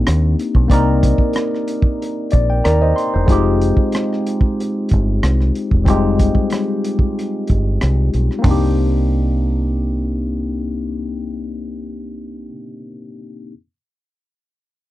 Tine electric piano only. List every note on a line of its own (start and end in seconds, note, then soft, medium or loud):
0.00 0.65 A#3 medium
0.00 0.66 C4 medium
0.00 0.67 D4 medium
0.00 0.67 D#4 medium
0.00 0.71 G4 medium
0.68 3.23 A#3 medium
0.68 3.24 C4 medium
0.68 2.31 D5 medium
0.72 3.25 D#4 medium
0.72 2.61 A#4 medium
2.32 2.48 D5 medium
2.50 2.63 G5 medium
2.64 2.81 A#4 soft
2.64 2.80 D5 medium
2.64 2.94 A#5 medium
2.82 3.12 C5 medium
2.82 3.12 D#5 medium
2.96 3.26 C6 medium
3.14 3.44 C5 medium
3.26 5.81 G#3 medium
3.26 5.82 C4 medium
3.26 5.82 D#4 medium
3.26 5.83 F4 medium
3.32 5.84 G4 medium
5.84 5.92 G3 medium
5.84 8.40 C4 medium
5.84 8.40 D#4 medium
5.88 8.42 G#3 medium
5.88 8.41 F4 medium
5.88 8.42 G4 medium
8.39 12.45 A#3 medium
8.39 12.47 C4 medium
8.44 12.48 D4 medium
8.44 12.50 D#4 medium
8.51 12.51 G4 medium